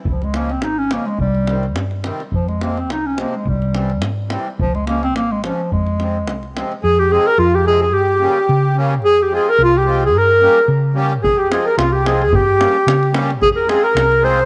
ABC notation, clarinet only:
X:1
M:2/4
L:1/16
Q:"Swing 16ths" 1/4=108
K:Fm
V:1 name="Clarinet"
F, A, B, C E D B, A, | G,4 z4 | F, A, B, C E D B, A, | G,4 z4 |
F, A, B, C B, A, F,2 | A,6 z2 | A G A B F G A A | G6 z2 |
A G A B F G2 A | B4 z4 | A G A B F G A A | G6 z2 |
A B A B3 c2 |]